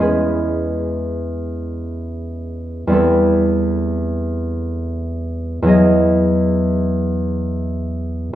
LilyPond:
\new Staff \with { instrumentName = "Harp" } { \time 6/8 \key e \major \tempo 4. = 43 <e, gis cis' gis' b'>2. | <e, g c' a' b'>2. | <e, fis b gis' dis''>2. | }